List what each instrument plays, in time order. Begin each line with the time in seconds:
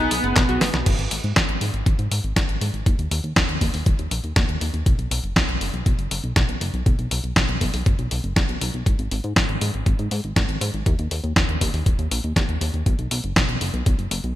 Already playing: lead electric guitar B3 B4, analog synth pad B3 D#4 G#4
0.11 analog synth bass B1, synth arpeggio sound B3, open hi-hat
0.24 analog synth bass F#1, synth arpeggio sound F#5, closed hi-hat
0.36 analog synth bass B1, synth arpeggio sound B3, kick, snare, clap, closed hi-hat
0.49 analog synth bass B1, synth arpeggio sound F#4, closed hi-hat
0.61 analog synth bass F#1, synth arpeggio sound B3, snare, open hi-hat
0.74 analog synth bass B1, synth arpeggio sound B3, snare, closed hi-hat
0.86 analog synth bass G#1, kick, closed hi-hat, crash
0.99 analog synth bass G#1, closed hi-hat
1.11 analog synth bass G#1, open hi-hat
1.24 analog synth bass G#2, closed hi-hat
1.36 analog synth bass G#1, kick, snare, closed hi-hat
1.49 analog synth bass G#1, closed hi-hat
1.61 analog synth bass G#2, open hi-hat
1.74 analog synth bass G#1, closed hi-hat
1.86 analog synth bass G#1, kick, closed hi-hat
1.99 analog synth bass G#2, closed hi-hat
2.11 analog synth bass G#2, open hi-hat
2.24 analog synth bass G#1, closed hi-hat
2.36 analog synth bass G#1, kick, snare, closed hi-hat
2.49 analog synth bass G#1, closed hi-hat
2.61 analog synth bass G#2, open hi-hat
2.74 analog synth bass G#1, closed hi-hat
2.86 analog synth bass D#2, kick, closed hi-hat
2.99 analog synth bass D#2, closed hi-hat
3.11 analog synth bass D#2, open hi-hat
3.24 analog synth bass D#2, closed hi-hat
3.36 analog synth bass D#2, kick, snare, closed hi-hat
3.49 analog synth bass D#2, closed hi-hat
3.61 analog synth bass D#2, kick, open hi-hat
3.74 analog synth bass D#2, open hi-hat
3.86 analog synth bass D#1, kick, closed hi-hat
3.99 analog synth bass D#2, closed hi-hat
4.11 analog synth bass A#1, open hi-hat
4.24 analog synth bass D#2, closed hi-hat
4.36 analog synth bass D#2, kick, snare, closed hi-hat
4.49 analog synth bass D#2, closed hi-hat
4.61 analog synth bass D#2, open hi-hat
4.74 analog synth bass D#2, closed hi-hat
4.86 analog synth bass B1, kick, closed hi-hat
4.99 analog synth bass B1, closed hi-hat
5.11 analog synth bass B1, open hi-hat
5.24 analog synth bass F#1, closed hi-hat
5.36 analog synth bass B1, kick, snare, closed hi-hat
5.49 analog synth bass B1, closed hi-hat
5.61 analog synth bass F#1, open hi-hat
5.74 analog synth bass B1, closed hi-hat
5.86 analog synth bass B1, kick, closed hi-hat
5.99 analog synth bass F#1, closed hi-hat
6.11 analog synth bass F#1, open hi-hat
6.24 analog synth bass B1, closed hi-hat
6.36 analog synth bass B1, kick, snare, closed hi-hat
6.49 analog synth bass B1, closed hi-hat
6.61 analog synth bass F#1, open hi-hat
6.74 analog synth bass B1, closed hi-hat
6.86 analog synth bass B1, kick, closed hi-hat
6.99 analog synth bass B1, closed hi-hat
7.11 analog synth bass B1, open hi-hat
7.24 analog synth bass B1, closed hi-hat
7.36 analog synth bass B1, kick, snare, closed hi-hat
7.49 analog synth bass B1, closed hi-hat
7.61 analog synth bass B1, kick, open hi-hat
7.74 analog synth bass B1, open hi-hat
7.86 analog synth bass F#1, kick, closed hi-hat
7.99 analog synth bass B1, closed hi-hat
8.11 analog synth bass B1, open hi-hat
8.24 analog synth bass F#1, closed hi-hat
8.36 analog synth bass F#1, kick, snare, closed hi-hat
8.49 analog synth bass B1, closed hi-hat
8.61 analog synth bass B1, open hi-hat
8.74 analog synth bass B1, closed hi-hat
8.86 analog synth bass G#1, kick, closed hi-hat
8.99 analog synth bass G#1, closed hi-hat
9.11 analog synth bass G#1, open hi-hat
9.24 analog synth bass G#2, closed hi-hat
9.36 analog synth bass G#1, kick, snare, closed hi-hat
9.49 analog synth bass G#1, closed hi-hat
9.61 analog synth bass G#2, open hi-hat
9.74 analog synth bass G#1, closed hi-hat
9.86 analog synth bass G#1, kick, closed hi-hat
9.99 analog synth bass G#2, closed hi-hat
10.11 analog synth bass G#2, open hi-hat
10.24 analog synth bass G#1, closed hi-hat
10.36 analog synth bass G#1, kick, snare, closed hi-hat
10.49 analog synth bass G#1, closed hi-hat
10.61 analog synth bass G#2, open hi-hat
10.74 analog synth bass G#1, closed hi-hat
10.86 analog synth bass D#2, kick, closed hi-hat
10.99 analog synth bass D#2, closed hi-hat
11.11 analog synth bass D#2, open hi-hat
11.24 analog synth bass D#2, closed hi-hat
11.36 analog synth bass D#2, kick, snare, closed hi-hat
11.49 analog synth bass D#2, closed hi-hat
11.61 analog synth bass D#2, kick, open hi-hat
11.74 analog synth bass D#2, open hi-hat
11.86 analog synth bass D#1, kick, closed hi-hat
11.99 analog synth bass D#2, closed hi-hat
12.11 analog synth bass A#1, open hi-hat
12.24 analog synth bass D#2, closed hi-hat
12.36 analog synth bass D#2, kick, snare, closed hi-hat
12.49 analog synth bass D#2, closed hi-hat
12.61 analog synth bass D#2, open hi-hat
12.74 analog synth bass D#2, closed hi-hat
12.86 analog synth bass B1, kick, closed hi-hat
12.99 analog synth bass B1, closed hi-hat
13.11 analog synth bass B1, open hi-hat
13.24 analog synth bass F#1, closed hi-hat
13.36 analog synth bass B1, kick, snare, closed hi-hat
13.49 analog synth bass B1, closed hi-hat
13.61 analog synth bass F#1, open hi-hat
13.74 analog synth bass B1, closed hi-hat
13.86 analog synth bass B1, kick, closed hi-hat
13.99 analog synth bass F#1, closed hi-hat
14.11 analog synth bass F#1, open hi-hat
14.24 analog synth bass B1, closed hi-hat